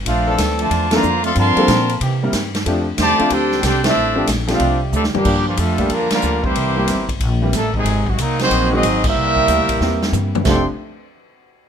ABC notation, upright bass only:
X:1
M:4/4
L:1/8
Q:"Swing" 1/4=185
K:F
V:1 name="Upright bass" clef=bass
B,,,2 D,,2 E,,2 F,,2 | G,, z B,,2 C,2 G,,2 | F,,2 E,, z D,,2 C,,2 | A,,,2 B,,,2 C,,2 D,, z |
G,,2 F,,2 E,, z D,,2 | C,,2 G,,,2 B,,,2 A,,,2 | _A,,,2 C,,2 B,,,2 A,,,2 | C,,2 (3D,, C,, B,,, E,,2 G,,2 |
F,,, z6 z |]